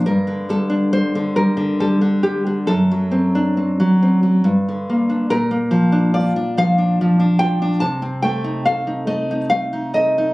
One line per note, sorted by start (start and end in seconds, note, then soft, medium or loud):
0.06 2.64 G2 medium
0.06 0.47 A#4 medium
0.27 1.14 D3 soft
0.49 0.92 G3 soft
0.49 0.91 A4 medium
0.70 2.02 D4 medium
0.93 1.36 G3 soft
0.93 1.34 C5 medium
1.15 1.56 D3 medium
1.36 1.79 G3 soft
1.36 1.78 A#4 medium
1.57 2.00 D3 soft
1.80 2.23 G3 soft
1.80 2.22 A4 medium
2.01 2.66 D3 soft
2.23 2.67 G3 soft
2.23 2.46 G4 medium
2.47 2.67 D4 soft
2.67 4.41 F#2 medium
2.67 3.97 A4 medium
2.91 3.79 F#3 soft
3.11 3.56 C4 soft
3.35 4.46 D4 medium
3.57 4.01 C4 soft
3.80 4.22 F#3 soft
4.02 4.45 C4 soft
4.23 4.44 F#3 soft
4.44 5.25 G2 medium
4.69 5.29 D3 soft
4.90 5.29 A#3 medium
5.10 5.29 D4 soft
5.30 7.78 A#2 medium
5.30 6.10 A#4 medium
5.51 6.76 A#3 soft
5.71 6.36 F3 medium
5.92 6.14 D4 medium
6.14 7.38 F4 medium
6.14 6.53 D5 medium
6.36 6.77 D4 medium
6.57 7.00 F3 medium
6.57 7.37 F5 medium
6.78 7.18 D4 medium
7.01 7.83 F3 medium
7.20 7.61 D4 soft
7.39 7.81 F4 soft
7.39 7.79 G5 medium
7.62 7.82 D4 medium
7.80 10.34 C3 medium
7.80 8.21 A5 medium
8.02 9.30 C4 soft
8.22 9.06 A3 soft
8.22 8.63 G5 medium
8.44 8.86 D#4 medium
8.65 9.92 A4 soft
8.65 9.07 F5 medium
8.87 9.30 D#4 medium
9.07 9.50 A3 medium
9.07 9.49 D#5 medium
9.31 9.72 D#4 medium
9.50 10.34 A3 soft
9.50 9.92 F5 medium
9.73 10.17 D#4 soft
9.94 10.34 A4 medium
9.94 10.34 D#5 medium
10.18 10.34 D#4 soft